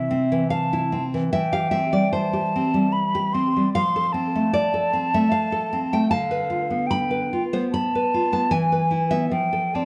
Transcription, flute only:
0.00 0.50 E5 medium
0.50 1.03 A5 medium
1.32 2.14 G5 medium
2.13 2.94 A5 medium
2.92 3.35 B5 medium
3.33 3.72 C6 medium
3.74 4.14 C6 medium
4.13 6.09 A5 medium
6.10 6.88 F5 medium
6.87 7.43 G5 medium
7.72 8.55 A5 medium
8.54 9.31 G#5 medium
9.31 9.76 G5 medium
9.75 9.85 A5 medium

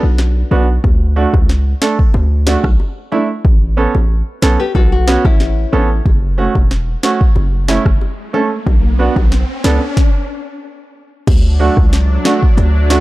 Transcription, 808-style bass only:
0.03 0.44 B1 medium
0.51 0.79 B1 medium
0.84 1.26 D2 loud
1.34 1.74 C#2 medium
2.14 2.56 D2 loud
2.64 2.77 B1 medium
3.45 3.87 A1 loud
3.95 4.22 A1 loud
4.42 4.57 B1 loud
4.75 5.17 B1 loud
5.25 5.65 A1 medium
5.73 6.01 A1 medium
6.06 6.48 F#1 loud
6.55 6.96 E1 medium
7.36 7.78 F#1 loud
7.86 7.99 F#1 medium
8.67 9.09 B1 loud
9.16 9.44 B1 loud
9.64 9.79 C#2 medium
11.27 11.70 D2 loud
11.77 12.18 C#2 medium
12.58 13.00 D2 loud

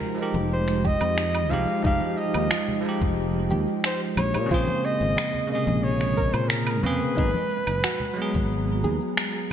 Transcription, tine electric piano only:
0.00 0.13 F3 medium
0.00 0.14 G#3 medium
0.00 0.15 D#4 medium
0.00 0.16 G4 loud
0.15 1.46 F3 medium
0.15 1.47 G#3 medium
0.19 1.48 D#4 medium
0.19 1.50 G4 medium
1.50 1.80 F3 medium
1.50 1.81 G#3 medium
1.50 1.81 D#4 medium
1.50 1.82 G4 loud
1.82 1.96 F3 medium
1.82 1.96 G#3 medium
1.82 1.97 D#4 medium
1.87 1.98 G4 medium
2.81 4.14 F3 medium
2.81 4.15 G#3 medium
2.86 4.17 D#4 medium
2.86 4.18 G4 loud
4.46 5.45 C#3 loud
4.46 5.46 A#3 medium
4.51 5.47 C4 medium
4.51 5.49 G#4 loud
5.47 6.79 C#3 medium
5.47 6.80 A#3 medium
5.52 6.81 C3 medium
5.52 6.83 G#4 medium
6.82 7.13 C#3 medium
6.82 7.14 A#3 medium
6.82 7.14 C4 medium
6.82 7.15 G#4 loud
7.15 7.29 F#3 medium
7.15 7.29 A#3 medium
7.15 7.30 B3 medium
7.15 7.31 G#4 medium
8.13 9.53 F#3 medium
8.13 9.53 G#3 medium
8.19 9.53 B3 medium
8.19 9.53 G#4 loud

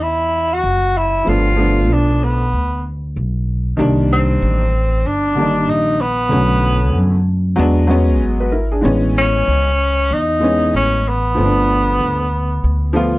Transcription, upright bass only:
0.00 0.60 E2 medium
0.64 1.23 F#1 medium
1.27 1.90 G1 medium
1.90 2.50 B1 medium
2.53 3.13 D2 medium
3.16 3.76 B1 medium
3.79 4.39 C2 loud
4.42 5.02 A1 medium
5.05 5.69 G1 medium
5.69 6.29 A#1 medium
6.32 6.95 B1 loud
6.95 7.55 F#2 loud
7.58 8.21 E2 medium
8.21 8.81 G#1 medium
8.85 9.44 A1 loud
9.48 10.08 C#2 medium
10.11 10.71 E2 medium
10.74 11.34 A1 medium
11.37 11.97 G1 medium
12.00 12.60 D2 medium
12.64 13.19 D2 medium

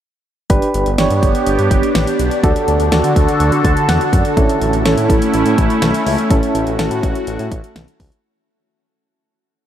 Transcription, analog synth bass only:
0.50 0.60 G1 loud
0.74 0.85 G1 loud
0.86 0.97 G1 loud
0.99 1.09 G1 medium
1.11 1.21 G2 loud
1.23 1.33 G1 loud
1.47 1.57 G1 loud
1.59 1.69 G2 loud
1.71 1.81 G1 loud
1.95 2.06 A1 medium
2.19 2.30 B1 medium
2.44 2.54 D2 loud
2.68 2.78 D2 loud
2.80 2.90 D2 loud
2.92 3.02 D2 loud
3.04 3.14 D3 loud
3.16 3.27 D2 loud
3.40 3.51 D2 medium
3.52 3.63 D3 loud
3.64 3.75 D2 loud
3.88 3.99 E2 loud
4.13 4.23 F#2 medium
4.37 4.47 A1 loud
4.61 4.71 A1 loud
4.73 4.83 A1 loud
4.85 4.96 A1 medium
4.97 5.08 A2 loud
5.10 5.20 A1 loud
5.34 5.44 A1 loud
5.46 5.56 A2 loud
5.58 5.68 A1 loud
5.82 5.93 B1 medium
6.06 6.17 C#2 medium
6.30 6.41 A1 loud
6.55 6.65 A1 loud
6.67 6.77 A1 loud
6.79 6.89 A1 medium
6.91 7.01 A2 loud
7.03 7.14 A1 loud
7.27 7.38 A1 loud
7.39 7.50 A2 loud
7.52 7.62 A1 loud
7.76 7.86 B1 medium
8.00 8.10 C#2 loud

